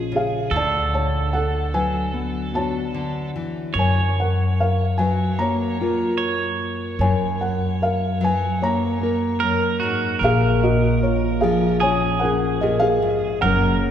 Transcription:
0.00 0.47 A#1 medium
0.00 0.47 A#2 medium
0.00 0.47 F3 medium
0.00 0.47 C#4 medium
0.00 0.47 F4 medium
0.00 0.48 G#4 medium
0.00 0.60 G#4 medium
0.00 0.16 D#5 medium
0.12 0.52 C#3 medium
0.12 0.51 G#4 medium
0.16 0.55 F5 medium
0.51 3.71 D2 medium
0.51 2.93 D3 medium
0.51 3.30 A4 medium
0.56 0.91 D5 medium
0.56 0.93 A5 loud
0.94 1.30 C#5 medium
0.94 1.30 A5 medium
1.33 1.71 A4 medium
1.33 1.74 F#5 medium
1.74 3.35 F#3 medium
1.74 2.50 B4 medium
1.74 2.56 G#5 medium
2.13 2.53 B3 medium
2.54 3.70 B3 medium
2.54 3.71 D4 medium
2.54 5.79 F#4 medium
2.54 3.32 C#5 medium
2.54 3.31 A5 medium
2.94 3.35 D3 medium
3.36 3.75 E3 medium
3.74 6.94 F#2 medium
3.74 6.98 F#2 medium
3.74 6.16 C#5 medium
3.79 4.15 C#5 medium
3.79 4.19 G#5 medium
4.20 4.56 A#4 medium
4.20 4.59 F#5 medium
4.60 4.96 A#4 medium
4.60 5.00 F5 medium
4.98 6.95 F#3 medium
4.98 5.36 B4 medium
4.98 5.39 G#5 medium
5.39 5.80 A#3 medium
5.39 6.56 C#5 medium
5.39 6.55 A#5 loud
5.80 8.61 A#3 medium
5.80 7.04 F4 medium
5.80 9.03 A#4 medium
6.18 9.50 C#5 loud
6.99 10.17 F#2 medium
6.99 9.41 F#2 medium
6.99 7.37 C#5 medium
6.99 7.37 G#5 medium
7.41 7.78 A#4 medium
7.41 7.81 F#5 medium
7.82 8.18 A#4 medium
7.82 8.22 F5 medium
8.21 10.16 F#3 medium
8.21 8.59 B4 medium
8.21 8.63 G#5 loud
8.62 9.01 A#3 medium
8.62 9.77 C#5 medium
8.62 9.78 A#5 loud
9.01 11.83 A#3 medium
9.01 12.24 A#4 medium
9.40 9.81 F#2 medium
9.40 9.81 A#4 loud
9.80 10.22 G#2 medium
9.80 10.21 F#4 medium
10.19 13.39 A#1 medium
10.19 12.61 A#2 medium
10.19 11.76 A#4 medium
10.24 10.60 G#4 medium
10.24 10.63 F5 loud
10.63 10.99 F#4 medium
10.63 10.99 D#5 medium
11.03 11.39 F4 medium
11.03 11.43 C#5 medium
11.41 13.39 F3 medium
11.41 11.78 G#4 medium
11.41 11.82 F5 medium
11.80 12.22 C#4 medium
11.80 13.41 G#4 medium
11.80 12.19 C#5 medium
11.80 12.22 G#5 loud
12.19 13.44 C#4 medium
12.19 12.58 A#4 medium
12.19 12.62 F#5 medium
12.25 13.39 G#4 medium
12.61 13.02 A#2 medium
12.61 12.81 G#4 medium
12.61 12.82 D#5 medium
12.80 13.38 G#4 medium
12.80 13.43 F5 loud
13.02 13.42 G#2 medium
13.41 13.91 F#1 medium
13.41 13.91 F#2 medium
13.41 13.91 F#3 medium
13.41 13.91 A#3 medium
13.41 13.91 A#4 medium
13.41 13.91 F#5 medium
13.45 13.91 C#4 medium
13.45 13.91 A#4 medium

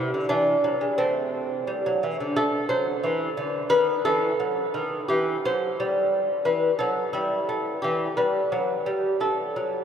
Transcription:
0.00 0.12 C3 medium
0.00 0.27 E4 medium
0.14 0.29 D3 medium
0.29 0.54 E3 medium
0.29 0.95 D4 medium
0.64 0.80 F#3 medium
0.81 0.97 G#3 medium
0.98 1.49 A3 medium
0.98 1.66 C4 medium
1.67 1.85 G3 medium
1.86 2.03 F#3 medium
2.03 2.20 E3 medium
2.20 2.37 D3 medium
2.36 2.61 A3 medium
2.36 2.69 A4 medium
2.69 2.95 F#3 medium
2.69 3.67 C5 medium
3.03 3.28 E3 medium
3.37 3.62 D3 medium
3.70 3.95 D#3 medium
3.70 4.03 B4 loud
4.05 4.30 E3 medium
4.05 5.06 A4 loud
4.40 4.65 F#3 medium
4.74 5.00 D#3 medium
5.08 5.35 E3 medium
5.08 5.44 G4 medium
5.45 5.70 F#3 medium
5.45 6.43 C5 medium
5.80 6.28 G3 medium
6.45 6.70 E3 medium
6.45 6.78 B4 medium
6.79 7.04 F#3 medium
6.79 7.11 A4 medium
7.13 7.38 G3 medium
7.13 7.78 E4 medium
7.49 7.73 A3 medium
7.82 8.08 E3 medium
7.82 8.14 G4 medium
8.17 8.41 G3 medium
8.17 9.16 B4 medium
8.52 8.76 F#3 medium
8.86 9.11 G3 medium
9.20 9.45 A3 medium
9.20 9.84 A4 medium
9.56 9.81 F#3 medium

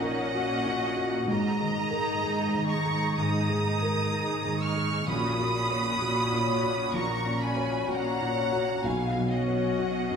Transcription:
0.00 1.25 A#1 soft
0.00 0.66 A#2 soft
0.00 1.26 A#2 medium
0.00 1.33 A#2 soft
0.00 3.62 A#3 soft
0.00 0.22 C#4 soft
0.00 0.32 C#4 medium
0.00 0.32 D#4 medium
0.00 0.34 F#4 soft
0.00 0.35 F#4 soft
0.00 0.02 A#4 soft
0.00 0.53 A#4 soft
0.00 0.82 C#5 soft
0.00 1.29 D#5 medium
0.00 1.30 F#5 loud
0.04 1.33 C#4 soft
0.35 1.28 A#3 medium
0.35 1.28 C#4 medium
0.35 0.85 F#4 soft
0.35 0.97 F#4 soft
0.66 1.16 A#2 soft
0.96 1.29 F#4 soft
0.96 1.33 F#4 soft
1.28 3.12 G#2 medium
1.28 2.12 G#2 medium
1.28 3.17 G#2 medium
1.28 2.67 D#5 medium
1.28 2.70 A#5 loud
1.59 3.48 D#3 soft
1.59 2.10 G#4 soft
1.78 2.69 D#4 medium
1.78 2.69 G#4 medium
1.90 3.80 D#4 soft
1.90 2.41 A#4 soft
2.22 3.06 G#2 medium
2.22 2.73 G#4 soft
2.22 2.85 G#4 soft
2.54 3.05 D#3 soft
2.70 3.64 D#4 medium
2.70 3.64 G#4 medium
2.70 3.16 A#5 medium
2.70 3.17 C#6 medium
2.85 3.36 G#4 soft
2.85 4.12 G#4 soft
3.17 4.01 G#2 medium
3.17 5.11 G#2 medium
3.17 3.68 D#3 soft
3.17 4.57 A#5 medium
3.17 4.59 D#6 medium
3.49 5.11 D#3 soft
3.49 4.00 G#4 soft
3.66 4.58 D#4 medium
3.66 4.58 G#4 medium
3.82 5.11 D#4 soft
3.82 4.32 A#4 soft
4.13 4.96 G#2 medium
4.13 4.74 G#4 soft
4.13 4.63 G#4 soft
4.45 4.95 D#3 soft
4.60 5.06 D#4 medium
4.60 5.06 G#4 medium
4.60 5.07 C#6 medium
4.60 5.08 F6 medium
4.75 5.10 G#4 soft
4.75 5.07 G#4 soft
5.07 6.91 A#1 soft
5.07 6.95 A#2 medium
5.07 5.91 A#2 medium
5.07 5.54 C#4 soft
5.07 5.54 F#4 medium
5.07 6.96 B5 medium
5.07 6.92 D#6 medium
5.39 7.26 A#3 soft
5.39 5.89 F#4 soft
5.55 6.47 C#4 soft
5.55 6.47 F#4 medium
5.70 7.57 C#4 soft
5.70 6.20 C#5 soft
6.02 6.84 A#2 medium
6.02 6.63 F#4 soft
6.02 6.52 F#4 soft
6.33 6.82 A#2 soft
6.33 8.21 C#5 soft
6.49 7.40 C#4 soft
6.49 7.39 F#4 medium
6.63 7.13 F#4 soft
6.63 7.89 F#4 soft
6.94 8.81 A#1 soft
6.94 7.78 A#2 medium
6.94 8.90 A#2 soft
6.94 7.41 A#5 medium
6.94 7.42 C#6 medium
7.25 8.90 A#3 soft
7.25 7.76 C#4 soft
7.41 8.35 C#4 medium
7.41 8.35 F#4 soft
7.41 7.90 G#5 medium
7.41 7.90 B5 medium
7.56 9.48 C#4 soft
7.56 8.08 C#5 soft
7.88 8.74 A#2 medium
7.88 8.40 F#4 soft
7.88 8.54 F#4 soft
7.88 8.86 F#5 medium
7.88 8.85 A#5 medium
8.21 8.72 A#2 soft
8.21 10.11 C#5 soft
8.38 8.84 C#4 soft
8.38 8.84 F#4 soft
8.53 8.85 F#4 soft
8.53 9.80 F#4 soft
8.84 10.16 B1 medium
8.84 9.69 B2 medium
8.84 10.16 B2 medium
8.84 9.33 F5 medium
8.84 9.32 G#5 medium
9.15 10.16 F#3 soft
9.15 9.67 F#4 soft
9.32 10.16 C#4 medium
9.32 10.16 F#4 soft
9.32 10.16 D#5 soft
9.32 10.16 F#5 medium
9.48 10.16 C#4 soft
9.48 9.99 C#5 soft
9.79 10.16 B2 medium
9.79 10.16 F#4 soft
10.11 10.16 F#2 soft
10.11 10.16 C#5 soft

